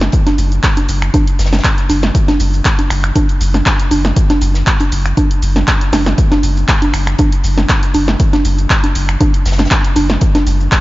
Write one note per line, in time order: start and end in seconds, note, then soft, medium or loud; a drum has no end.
0.01 snare medium
0.01 closed hi-hat soft
0.01 shaker soft
0.12 kick loud
0.12 closed hi-hat medium
0.12 shaker soft
0.26 snare medium
0.26 snare soft
0.26 closed hi-hat medium
0.26 high conga medium
0.26 shaker soft
0.38 0.59 F#1 loud
0.38 closed hi-hat medium
0.38 open hi-hat loud
0.38 shaker medium
0.52 closed hi-hat soft
0.52 shaker soft
0.63 kick loud
0.63 snare loud
0.63 clap loud
0.63 closed hi-hat medium
0.63 shaker medium
0.77 closed hi-hat soft
0.77 closed hi-hat medium
0.77 high conga soft
0.77 shaker soft
0.89 1.10 F#1 medium
0.89 closed hi-hat medium
0.89 open hi-hat loud
0.89 shaker medium
1.02 finger snap medium
1.02 closed hi-hat soft
1.02 shaker soft
1.14 kick loud
1.14 closed hi-hat medium
1.14 high conga medium
1.14 shaker soft
1.27 closed hi-hat medium
1.27 shaker soft
1.39 1.60 F#1 loud
1.39 snare medium
1.39 closed hi-hat medium
1.39 open hi-hat loud
1.39 shaker medium
1.46 snare medium
1.46 closed hi-hat medium
1.53 snare medium
1.53 closed hi-hat soft
1.53 closed hi-hat medium
1.53 high conga soft
1.53 shaker soft
1.59 snare medium
1.59 closed hi-hat medium
1.64 kick loud
1.64 snare loud
1.64 clap loud
1.64 closed hi-hat medium
1.64 shaker soft
1.78 closed hi-hat medium
1.78 shaker soft
1.90 2.11 F#1 loud
1.90 snare medium
1.90 closed hi-hat medium
1.90 open hi-hat medium
1.90 high conga medium
1.90 shaker medium
2.02 snare medium
2.02 closed hi-hat soft
2.02 shaker soft
2.15 kick loud
2.15 closed hi-hat medium
2.15 shaker soft
2.28 snare medium
2.28 snare soft
2.28 closed hi-hat medium
2.28 high conga medium
2.28 shaker soft
2.40 2.61 F#1 loud
2.40 closed hi-hat medium
2.40 open hi-hat loud
2.40 shaker medium
2.54 shaker soft
2.65 kick loud
2.65 snare loud
2.65 clap loud
2.65 closed hi-hat medium
2.65 shaker soft
2.79 closed hi-hat medium
2.79 high conga soft
2.79 shaker soft
2.90 3.12 F#1 medium
2.90 finger snap medium
2.90 closed hi-hat medium
2.90 open hi-hat medium
2.90 shaker medium
3.04 finger snap medium
3.04 closed hi-hat soft
3.04 shaker soft
3.15 kick loud
3.15 closed hi-hat loud
3.15 closed hi-hat medium
3.15 high conga medium
3.15 shaker soft
3.29 closed hi-hat soft
3.29 closed hi-hat medium
3.29 shaker soft
3.41 3.62 F#1 loud
3.41 closed hi-hat medium
3.41 open hi-hat loud
3.41 shaker medium
3.54 snare medium
3.54 closed hi-hat soft
3.54 high conga soft
3.54 shaker soft
3.66 kick loud
3.66 snare loud
3.66 clap loud
3.66 closed hi-hat medium
3.66 shaker soft
3.80 closed hi-hat medium
3.80 shaker soft
3.91 4.12 F#1 loud
3.91 closed hi-hat medium
3.91 open hi-hat medium
3.91 high conga medium
3.91 shaker medium
4.05 snare medium
4.05 closed hi-hat soft
4.05 shaker soft
4.16 kick loud
4.16 closed hi-hat medium
4.16 shaker soft
4.30 snare soft
4.30 snare medium
4.30 closed hi-hat medium
4.30 high conga medium
4.30 shaker soft
4.41 4.63 F#1 loud
4.41 closed hi-hat medium
4.41 open hi-hat loud
4.41 shaker medium
4.54 snare medium
4.54 closed hi-hat soft
4.54 shaker soft
4.67 kick loud
4.67 clap loud
4.67 closed hi-hat medium
4.67 shaker soft
4.80 closed hi-hat medium
4.80 high conga soft
4.80 shaker soft
4.92 5.13 F#1 medium
4.92 open hi-hat medium
4.92 shaker medium
5.06 finger snap medium
5.06 closed hi-hat soft
5.06 closed hi-hat medium
5.06 shaker soft
5.17 kick loud
5.17 closed hi-hat medium
5.17 high conga medium
5.17 shaker soft
5.31 closed hi-hat medium
5.31 shaker soft
5.42 5.64 F#1 loud
5.42 closed hi-hat medium
5.42 open hi-hat loud
5.42 shaker medium
5.56 snare medium
5.56 closed hi-hat soft
5.56 high conga soft
5.56 shaker soft
5.67 kick loud
5.67 snare loud
5.67 clap loud
5.67 closed hi-hat loud
5.67 closed hi-hat medium
5.67 shaker soft
5.81 closed hi-hat medium
5.81 shaker soft
5.93 6.14 F#1 medium
5.93 snare medium
5.93 closed hi-hat medium
5.93 open hi-hat medium
5.93 high conga medium
5.93 shaker medium
6.06 snare medium
6.06 closed hi-hat soft
6.06 shaker soft
6.18 kick loud
6.18 closed hi-hat medium
6.18 shaker soft
6.31 snare medium
6.31 snare soft
6.31 closed hi-hat medium
6.31 high conga medium
6.31 shaker soft
6.43 6.64 F#1 loud
6.43 closed hi-hat medium
6.43 open hi-hat loud
6.43 shaker medium
6.57 shaker soft
6.68 kick loud
6.68 snare loud
6.68 clap loud
6.68 closed hi-hat medium
6.68 shaker soft
6.82 closed hi-hat medium
6.82 high conga soft
6.82 shaker soft
6.94 7.15 F#1 medium
6.94 finger snap medium
6.94 closed hi-hat medium
6.94 open hi-hat medium
6.94 shaker medium
7.07 finger snap medium
7.07 closed hi-hat soft
7.07 shaker soft
7.19 kick loud
7.19 closed hi-hat medium
7.19 high conga medium
7.19 shaker soft
7.32 closed hi-hat soft
7.32 closed hi-hat medium
7.32 shaker soft
7.44 7.65 F#1 loud
7.44 closed hi-hat medium
7.44 open hi-hat loud
7.44 shaker medium
7.58 snare medium
7.58 closed hi-hat soft
7.58 high conga soft
7.58 shaker soft
7.69 kick loud
7.69 snare loud
7.69 clap loud
7.69 closed hi-hat medium
7.69 shaker soft
7.83 closed hi-hat medium
7.83 shaker soft
7.94 8.16 F#1 loud
7.94 closed hi-hat medium
7.94 open hi-hat medium
7.94 high conga medium
7.94 shaker medium
8.08 snare medium
8.08 closed hi-hat soft
8.08 shaker soft
8.20 kick loud
8.20 closed hi-hat medium
8.20 shaker soft
8.33 snare soft
8.33 snare medium
8.33 closed hi-hat medium
8.33 high conga medium
8.33 shaker soft
8.45 8.66 F#1 loud
8.45 closed hi-hat medium
8.45 open hi-hat loud
8.45 shaker medium
8.58 closed hi-hat soft
8.58 shaker soft
8.70 kick loud
8.70 snare loud
8.70 clap loud
8.70 closed hi-hat medium
8.70 shaker soft
8.84 closed hi-hat medium
8.84 closed hi-hat soft
8.84 high conga soft
8.84 shaker soft
8.95 9.17 F#1 medium
8.95 closed hi-hat medium
8.95 open hi-hat loud
8.95 shaker medium
9.09 finger snap medium
9.09 closed hi-hat soft
9.09 shaker soft
9.21 kick loud
9.21 closed hi-hat medium
9.21 high conga medium
9.21 shaker soft
9.34 closed hi-hat medium
9.34 shaker soft
9.46 9.67 F#1 loud
9.46 snare medium
9.46 closed hi-hat medium
9.46 open hi-hat loud
9.46 shaker medium
9.52 snare medium
9.52 closed hi-hat medium
9.58 snare medium
9.58 closed hi-hat medium
9.58 closed hi-hat soft
9.58 high conga soft
9.58 shaker soft
9.65 snare medium
9.65 closed hi-hat medium
9.71 kick loud
9.71 snare loud
9.71 clap loud
9.71 closed hi-hat medium
9.71 shaker soft
9.84 closed hi-hat medium
9.84 shaker soft
9.96 10.17 F#1 loud
9.96 snare medium
9.96 closed hi-hat medium
9.96 open hi-hat loud
9.96 high conga medium
9.96 shaker medium
10.10 snare medium
10.10 closed hi-hat soft
10.10 shaker soft
10.21 kick loud
10.21 closed hi-hat loud
10.21 closed hi-hat medium
10.21 shaker soft
10.35 snare soft
10.35 snare medium
10.35 closed hi-hat medium
10.35 high conga medium
10.35 shaker soft
10.47 10.68 F#1 loud
10.47 closed hi-hat medium
10.47 open hi-hat loud
10.47 shaker medium
10.60 shaker soft
10.71 kick loud
10.71 snare loud
10.71 clap loud
10.71 closed hi-hat medium
10.71 shaker soft